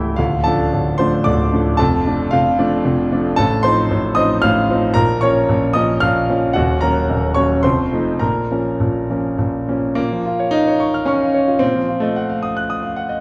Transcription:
0.00 0.20 C#1 medium
0.00 0.21 C#2 medium
0.00 0.21 E3 medium
0.00 0.21 A3 medium
0.00 0.21 E4 medium
0.00 0.14 G4 medium
0.00 0.21 A4 medium
0.00 0.17 G5 medium
0.00 0.21 A5 medium
0.16 0.45 D1 medium
0.16 0.45 D2 medium
0.16 0.43 F4 medium
0.16 0.44 F5 medium
0.44 0.70 F3 medium
0.44 0.70 A3 medium
0.44 0.70 D4 medium
0.44 0.95 A4 medium
0.44 0.98 A5 medium
0.73 0.99 D1 medium
0.73 0.99 D2 medium
0.98 1.23 F3 medium
0.98 1.24 A3 medium
0.98 1.24 D4 medium
0.98 1.24 C5 medium
0.98 1.25 C6 medium
1.24 1.52 D1 medium
1.24 1.52 D2 medium
1.24 1.75 D5 medium
1.24 1.78 D6 medium
1.53 1.77 F3 medium
1.53 1.77 A3 medium
1.53 1.77 D4 medium
1.77 2.05 F1 medium
1.77 2.05 F2 medium
1.77 2.28 A4 medium
1.77 2.31 A5 medium
2.06 2.30 F3 medium
2.06 2.30 A3 medium
2.06 2.30 D4 medium
2.31 2.59 F1 medium
2.31 2.58 F2 medium
2.31 3.34 F4 medium
2.31 3.38 F5 loud
2.58 2.82 F3 medium
2.58 2.83 A3 medium
2.58 2.83 D4 medium
2.85 3.11 F1 medium
2.85 3.11 F2 medium
3.12 3.36 F3 medium
3.12 3.36 A3 medium
3.12 3.36 D4 medium
3.36 3.64 A1 medium
3.36 3.64 A2 medium
3.36 3.62 A4 medium
3.36 3.64 A5 loud
3.63 3.88 F3 medium
3.63 3.89 C4 medium
3.63 3.89 D#4 medium
3.63 4.13 C5 medium
3.63 4.16 C6 loud
3.91 4.16 A1 medium
3.91 4.16 A2 medium
4.15 4.40 F3 medium
4.15 4.41 C4 medium
4.15 4.41 D#4 medium
4.15 4.41 D#5 medium
4.15 4.42 D#6 loud
4.42 4.69 A1 medium
4.42 4.69 A2 medium
4.42 4.92 F5 medium
4.42 4.95 F6 loud
4.70 4.94 F3 medium
4.70 4.94 C4 medium
4.70 4.94 D#4 medium
4.94 5.22 A#1 medium
4.94 5.22 A#2 medium
4.94 5.20 A#4 medium
4.94 5.21 A#5 loud
5.21 5.47 F3 medium
5.21 5.47 A#3 medium
5.21 5.47 C#4 medium
5.21 5.72 C#5 medium
5.21 5.74 C#6 medium
5.49 5.74 A#1 medium
5.49 5.75 A#2 medium
5.73 5.99 F3 medium
5.73 6.00 A#3 medium
5.73 6.00 C#4 medium
5.73 6.00 D#5 medium
5.73 6.01 D#6 loud
6.00 6.28 A#1 medium
6.00 6.28 A#2 medium
6.00 6.52 F5 medium
6.00 6.55 F6 loud
6.29 6.53 F3 medium
6.29 6.53 A#3 medium
6.29 6.54 C#4 medium
6.53 6.82 D#1 medium
6.53 6.81 D#2 medium
6.53 6.80 F#4 medium
6.53 6.81 F#5 medium
6.81 7.06 F#3 medium
6.81 7.07 A#3 medium
6.81 7.07 C#4 medium
6.81 7.32 A#4 medium
6.81 7.35 A#5 medium
7.10 7.36 D#1 medium
7.10 7.36 D#2 medium
7.34 7.61 F#3 medium
7.34 7.61 A#3 medium
7.34 7.62 C#4 medium
7.34 7.62 C#5 medium
7.34 7.63 C#6 medium
7.63 7.92 F1 medium
7.63 7.92 F2 medium
7.63 8.17 C5 medium
7.63 8.21 C6 medium
7.93 8.19 F3 soft
7.93 8.19 A3 soft
7.93 8.19 D#4 medium
8.19 8.50 A#1 medium
8.19 8.50 A#2 medium
8.19 9.34 A#4 medium
8.19 9.38 A#5 medium
8.51 8.77 F3 soft
8.51 8.78 A#3 soft
8.51 8.78 C#4 medium
8.80 9.09 A#1 medium
8.80 9.09 A#2 medium
9.10 9.36 F3 soft
9.10 9.36 A#3 soft
9.10 9.37 C#4 medium
9.38 9.67 A#1 medium
9.38 9.67 A#2 medium
9.68 9.94 F3 soft
9.68 9.94 A#3 soft
9.68 9.95 C#4 medium
9.95 11.58 A#2 medium
9.95 10.52 A#3 medium
10.12 10.34 F3 medium
10.26 10.48 F4 medium
10.40 10.62 C#5 medium
10.51 11.06 D#4 loud
10.51 10.75 F5 medium
10.67 10.89 C#5 medium
10.80 11.02 C#6 medium
10.94 11.16 F6 medium
11.06 11.61 C#4 medium
11.06 11.29 C#6 medium
11.21 11.43 F5 medium
11.34 11.56 C#5 medium
11.48 11.62 F4 medium
11.59 13.18 A#2 medium
11.59 12.01 C4 medium
11.75 11.97 F3 medium
11.89 12.11 F4 medium
12.00 12.95 A3 medium
12.00 12.24 D#5 medium
12.16 12.38 F#5 medium
12.30 12.51 F5 medium
12.43 12.64 D#6 medium
12.57 12.77 F#6 medium
12.70 12.91 D#6 medium
12.83 13.04 F5 medium
12.96 13.18 F#5 medium
13.09 13.20 D#5 medium

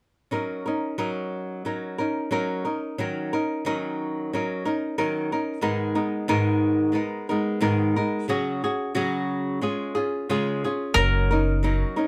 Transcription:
0.31 0.65 F#3 soft
0.31 0.65 C#4 soft
0.31 0.65 D#4 soft
0.31 0.64 A#4 soft
0.66 0.97 C#4 soft
0.66 0.97 D#4 soft
0.66 0.97 A#4 soft
0.98 1.64 F#3 medium
0.98 1.65 C#4 medium
0.98 1.65 D#4 medium
0.98 1.66 A#4 medium
1.65 1.99 F#3 soft
1.65 1.99 C#4 soft
1.65 1.98 D#4 soft
1.65 1.97 A#4 soft
1.98 2.31 C#4 soft
1.98 2.31 D#4 soft
1.98 2.31 A#4 soft
2.31 2.65 F#3 medium
2.31 2.65 C#4 medium
2.31 2.64 D#4 medium
2.31 2.63 A#4 medium
2.65 2.97 C#4 soft
2.65 2.98 D#4 soft
2.65 2.98 A#4 soft
2.98 3.32 D#3 soft
2.98 3.32 F#3 medium
2.98 3.32 C#4 medium
2.98 3.33 D#4 medium
2.98 3.32 A#4 medium
3.33 3.65 C#4 soft
3.33 3.65 D#4 soft
3.33 3.65 A#4 soft
3.65 4.36 D#3 medium
3.65 4.32 F#3 medium
3.65 4.32 C#4 medium
3.65 4.34 D#4 medium
3.65 4.34 A#4 medium
4.33 4.66 F#3 soft
4.33 4.65 C#4 soft
4.33 4.65 D#4 medium
4.33 4.64 A#4 soft
4.65 4.98 C#4 soft
4.65 4.97 D#4 soft
4.65 4.97 A#4 soft
4.98 5.31 D#3 medium
4.98 5.31 F#3 soft
4.98 5.31 C#4 medium
4.98 5.31 D#4 medium
4.98 5.31 A#4 medium
5.32 5.62 C#4 soft
5.32 5.61 D#4 soft
5.32 5.61 A#4 soft
5.61 5.95 G#2 soft
5.61 5.96 D#3 soft
5.61 5.95 G#3 medium
5.61 5.94 B3 medium
5.61 5.94 D#4 medium
5.61 5.94 A#4 medium
5.95 6.28 G#3 soft
5.95 6.28 B3 soft
5.95 6.28 D#4 soft
5.95 6.28 A#4 soft
6.28 6.94 G#2 medium
6.28 6.95 D#3 medium
6.28 6.92 G#3 medium
6.28 6.92 B3 medium
6.28 6.93 D#4 medium
6.28 6.94 A#4 medium
6.92 7.27 G#3 soft
6.92 7.27 B3 medium
6.92 7.28 D#4 soft
6.92 7.28 A#4 soft
7.29 7.60 G#3 soft
7.29 7.61 B3 soft
7.29 7.60 D#4 soft
7.29 7.61 A#4 soft
7.61 7.94 G#2 medium
7.61 7.94 D#3 medium
7.61 7.95 G#3 medium
7.61 7.95 B3 medium
7.61 7.95 D#4 medium
7.61 7.95 A#4 medium
7.96 8.28 G#3 soft
7.96 8.29 B3 soft
7.96 8.29 D#4 soft
7.96 8.28 A#4 soft
8.28 8.61 C#3 medium
8.28 8.62 F#3 medium
8.28 8.62 C#4 medium
8.28 8.62 F#4 medium
8.28 8.62 G#4 medium
8.64 8.94 C#4 soft
8.64 8.94 F#4 soft
8.64 8.95 G#4 soft
8.95 9.61 C#3 medium
8.95 9.61 F#3 medium
8.95 9.62 C#4 medium
8.95 9.61 F#4 medium
8.95 9.62 G#4 medium
9.61 9.95 G#3 soft
9.61 9.95 C#4 medium
9.61 9.95 F4 soft
9.61 9.94 G#4 medium
9.95 10.28 C#4 soft
9.95 10.29 F4 soft
9.95 10.28 G#4 soft
10.29 10.63 C#3 medium
10.29 10.63 G#3 medium
10.29 10.63 C#4 medium
10.29 10.63 F4 medium
10.29 10.63 G#4 medium
10.64 10.97 C#4 soft
10.64 10.97 F4 soft
10.64 10.97 G#4 soft
10.94 11.82 F#1 medium
10.94 11.30 F#3 medium
10.94 11.30 C#4 medium
10.94 11.30 D#4 medium
10.94 12.07 A#4 medium
10.94 11.29 A#4 medium
11.31 11.62 C#4 soft
11.31 11.63 D#4 soft
11.31 11.63 A#4 soft
11.63 11.96 F#3 medium
11.63 11.96 C#4 medium
11.63 11.96 D#4 medium
11.63 11.95 A#4 medium
11.96 12.07 C#4 soft
11.96 12.07 D#4 soft
11.96 12.07 A#4 soft

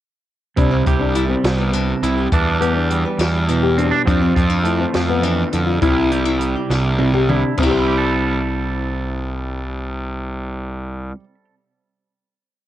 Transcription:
0.56 0.81 C2 medium
0.56 1.73 C3 medium
0.56 0.71 D4 medium
0.56 2.02 E4 soft
0.56 kick medium
0.56 closed hi-hat medium
0.71 0.99 C4 medium
0.86 1.34 C2 medium
0.86 2.29 G4 soft
0.86 kick medium
0.86 closed hi-hat medium
1.00 1.15 D4 medium
1.15 2.89 G3 medium
1.15 1.29 E4 medium
1.15 closed hi-hat medium
1.29 1.58 C4 soft
1.44 1.92 C2 medium
1.44 snare loud
1.44 closed hi-hat medium
1.58 1.73 B3 medium
1.73 2.28 C3 soft
1.73 2.03 D4 medium
1.73 closed hi-hat medium
2.02 2.26 C2 medium
2.02 2.28 E4 medium
2.02 2.17 E4 medium
2.02 closed hi-hat medium
2.17 2.32 G4 medium
2.32 3.04 E2 medium
2.32 4.04 E3 medium
2.32 3.77 D4 medium
2.32 2.61 E4 medium
2.32 kick medium
2.32 closed hi-hat medium
2.61 2.75 B3 medium
2.61 4.03 G4 soft
2.61 closed hi-hat medium
2.76 3.05 D4 medium
2.90 4.07 G3 medium
2.90 closed hi-hat medium
3.05 3.19 B3 medium
3.18 3.91 E2 medium
3.18 3.48 D4 medium
3.18 snare medium
3.18 closed hi-hat medium
3.48 4.03 B2 medium
3.48 3.63 E4 medium
3.48 closed hi-hat medium
3.63 3.77 G4 medium
3.77 3.91 C4 medium
3.77 4.06 D4 medium
3.77 closed hi-hat medium
3.91 4.05 D4 soft
4.05 4.31 F2 medium
4.05 4.92 F3 medium
4.05 5.82 C4 medium
4.05 4.21 D4 medium
4.05 kick medium
4.05 closed hi-hat medium
4.21 4.50 C4 medium
4.35 4.84 F2 medium
4.35 5.78 F4 soft
4.35 kick medium
4.35 closed hi-hat medium
4.50 4.65 D4 medium
4.63 6.15 A3 medium
4.63 4.80 E4 medium
4.63 closed hi-hat soft
4.80 5.09 C4 medium
4.93 5.43 F2 medium
4.93 5.22 F3 medium
4.93 snare medium
4.93 closed hi-hat medium
5.09 5.23 B3 medium
5.23 5.52 E3 medium
5.23 5.53 D4 medium
5.23 closed hi-hat soft
5.53 5.77 F2 medium
5.53 5.82 D3 medium
5.53 5.66 E4 medium
5.53 closed hi-hat medium
5.67 5.81 F4 medium
5.81 6.54 C2 medium
5.81 6.97 C3 medium
5.81 6.11 E4 medium
5.81 7.29 E4 medium
5.81 kick medium
5.81 closed hi-hat medium
6.11 6.25 C4 medium
6.11 7.55 G4 soft
6.11 closed hi-hat medium
6.25 6.56 E4 medium
6.39 7.66 G3 medium
6.39 closed hi-hat medium
6.56 6.71 C4 medium
6.70 7.42 C2 medium
6.70 7.00 D4 medium
6.70 snare soft
6.98 7.54 C3 medium
6.98 7.14 E4 medium
6.98 high tom medium
7.14 7.29 G4 medium
7.14 mid tom medium
7.29 7.58 D4 medium
7.29 7.55 E4 medium
7.29 mid tom medium
7.57 11.11 C2 medium
7.57 11.14 C3 medium
7.57 7.63 C4 medium
7.57 kick medium
7.57 crash medium
7.63 11.20 E4 medium
7.63 11.19 G4 medium
7.68 11.24 G3 medium
7.68 11.24 C5 medium
7.78 11.34 E4 medium
7.88 11.45 G4 medium
7.98 11.54 A4 soft

